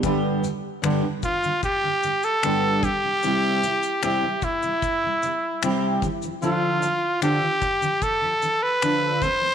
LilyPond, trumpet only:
\new Staff \with { instrumentName = "Trumpet" } { \time 4/4 \key d \dorian \tempo 4 = 75 r4. f'8 g'8. a'8. g'8~ | g'4 g'8 e'2 r8 | f'4 g'4 a'8. b'8. c''8 | }